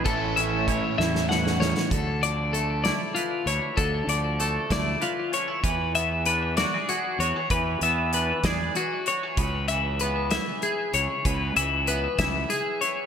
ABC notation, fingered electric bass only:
X:1
M:6/8
L:1/16
Q:3/8=64
K:Dlyd
V:1 name="Fingered electric bass" clef=bass
A,,,6 E,,6 | D,,8 z2 D,, z | D,,2 D,,4 D,,2 z4 | E,,8 z2 E,, z |
E,,2 E,,4 E,,2 z4 | C,,8 z2 C,, z | C,,2 C,,4 C,,2 z4 |]